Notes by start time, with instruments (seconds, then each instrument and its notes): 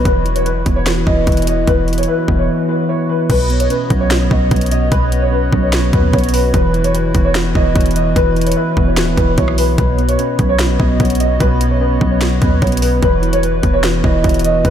Already playing: analog synth pad F#4
0.05 808-style bass E1, tine electric piano E3, analog synth pad E3 E4 B4, grand piano B4, kick, closed hi-hat
0.25 tine electric piano E4, closed hi-hat
0.36 grand piano C#5, closed hi-hat
0.46 grand piano B4, tine electric piano B4, closed hi-hat
0.66 808-style bass E1, tine electric piano B3, kick, closed hi-hat
0.76 grand piano C#5
0.86 tine electric piano E3, snare, closed hi-hat
1.07 808-style bass E1, tine electric piano E4, grand piano D#5, kick
1.26 808-style bass E1, tine electric piano E4, kick, closed hi-hat
1.32 closed hi-hat
1.37 closed hi-hat
1.42 closed hi-hat
1.47 tine electric piano E3, grand piano D#5, closed hi-hat
1.67 808-style bass E1, tine electric piano E3, grand piano B4, kick, closed hi-hat
1.88 tine electric piano E4, closed hi-hat
1.93 closed hi-hat
1.98 grand piano C#5, closed hi-hat
2.03 closed hi-hat
2.08 grand piano B4, tine electric piano E5
2.28 808-style bass E1, tine electric piano B3, kick
2.39 grand piano C#5
2.49 tine electric piano E3
2.69 tine electric piano E4, grand piano B4
2.89 tine electric piano E4, grand piano C#5
3.09 tine electric piano E3, grand piano B4
3.29 808-style bass B1, tine electric piano B2, analog synth pad B3 F#4 C#5 D#5, grand piano B4, kick, closed hi-hat, crash
3.50 tine electric piano B3, closed hi-hat
3.60 grand piano C#5, closed hi-hat
3.70 tine electric piano C#4, grand piano B4, closed hi-hat
3.90 808-style bass B1, tine electric piano F#3, kick, closed hi-hat
4.01 grand piano C#5
4.11 tine electric piano B2, snare, closed hi-hat
4.31 808-style bass B1, tine electric piano B3, grand piano D#5, kick
4.51 808-style bass B1, tine electric piano B3, kick, closed hi-hat
4.56 closed hi-hat
4.61 closed hi-hat
4.66 closed hi-hat
4.71 tine electric piano B2, grand piano D#5, closed hi-hat
4.92 808-style bass B1, tine electric piano B2, grand piano B4, kick, closed hi-hat
5.12 tine electric piano B3, closed hi-hat
5.22 grand piano C#5
5.32 tine electric piano C#4, grand piano B4
5.53 808-style bass B1, tine electric piano F#3, kick
5.63 grand piano C#5
5.73 tine electric piano B2, snare, closed hi-hat
5.93 808-style bass D#2, tine electric piano B3, grand piano B4, kick, closed hi-hat
6.13 808-style bass B1, tine electric piano B3, grand piano C#5, kick, closed hi-hat
6.18 closed hi-hat
6.24 closed hi-hat
6.29 closed hi-hat
6.33 tine electric piano B2, grand piano B4, open hi-hat
6.54 808-style bass E1, tine electric piano E3, analog synth pad E3 E4 B4, grand piano B4, kick, closed hi-hat
6.74 tine electric piano E4, closed hi-hat
6.84 grand piano C#5, closed hi-hat
6.94 grand piano B4, tine electric piano B4, closed hi-hat
7.15 808-style bass E1, tine electric piano B3, kick, closed hi-hat
7.25 grand piano C#5
7.35 tine electric piano E3, snare, closed hi-hat
7.55 808-style bass E1, tine electric piano E4, grand piano D#5, kick
7.75 808-style bass E1, tine electric piano E4, kick, closed hi-hat
7.81 closed hi-hat
7.86 closed hi-hat
7.91 closed hi-hat
7.96 tine electric piano E3, grand piano D#5, closed hi-hat
8.16 808-style bass E1, tine electric piano E3, grand piano B4, kick, closed hi-hat
8.36 tine electric piano E4, closed hi-hat
8.41 closed hi-hat
8.47 grand piano C#5, closed hi-hat
8.52 closed hi-hat
8.57 grand piano B4, tine electric piano E5
8.77 808-style bass E1, tine electric piano B3, kick
8.87 grand piano C#5
8.97 808-style bass D#1, tine electric piano E3, snare, closed hi-hat
9.17 808-style bass E1, tine electric piano E4, grand piano B4, kick, closed hi-hat
9.38 808-style bass B1, tine electric piano E4, grand piano C#5, kick, closed hi-hat
9.48 cross-stick
9.58 tine electric piano E3, grand piano B4, open hi-hat
9.78 808-style bass B1, tine electric piano B2, analog synth pad B3 C#5 D#5, grand piano B4, kick, closed hi-hat
9.99 tine electric piano B3, closed hi-hat
10.09 grand piano C#5, closed hi-hat
10.19 tine electric piano C#4, grand piano B4, closed hi-hat
10.39 808-style bass B1, tine electric piano F#3, kick, closed hi-hat
10.49 grand piano C#5
10.59 tine electric piano B2, snare, closed hi-hat
10.80 808-style bass B1, tine electric piano B3, grand piano D#5, kick
11.00 808-style bass B1, tine electric piano B3, kick, closed hi-hat
11.05 closed hi-hat
11.10 closed hi-hat
11.15 closed hi-hat
11.20 tine electric piano B2, grand piano D#5, closed hi-hat
11.40 808-style bass B1, tine electric piano B2, grand piano B4, kick, closed hi-hat
11.61 tine electric piano B3, closed hi-hat
11.71 grand piano C#5
11.80 tine electric piano C#4, grand piano B4
12.01 808-style bass B1, tine electric piano F#3, kick
12.11 grand piano C#5
12.21 tine electric piano B2, snare, closed hi-hat
12.42 808-style bass D#2, tine electric piano B3, grand piano B4, kick, closed hi-hat
12.62 808-style bass B1, tine electric piano B3, grand piano C#5, kick, closed hi-hat
12.67 closed hi-hat
12.72 closed hi-hat
12.77 closed hi-hat
12.82 tine electric piano B2, grand piano B4, open hi-hat
13.02 808-style bass E1, tine electric piano E3, analog synth pad E3 E4 F#4 B4, grand piano B4, kick, closed hi-hat
13.22 tine electric piano E4, closed hi-hat
13.33 grand piano C#5, closed hi-hat
13.43 tine electric piano B4, grand piano B4, closed hi-hat
13.63 808-style bass E1, tine electric piano B3, kick, closed hi-hat
13.74 grand piano C#5
13.84 tine electric piano E3, snare, closed hi-hat
14.04 808-style bass E1, tine electric piano E4, grand piano D#5, kick
14.23 808-style bass E1, tine electric piano E4, kick, closed hi-hat
14.29 closed hi-hat
14.34 closed hi-hat
14.39 closed hi-hat
14.44 tine electric piano E3, grand piano D#5, closed hi-hat
14.65 808-style bass E1, tine electric piano E3, grand piano B4, kick, closed hi-hat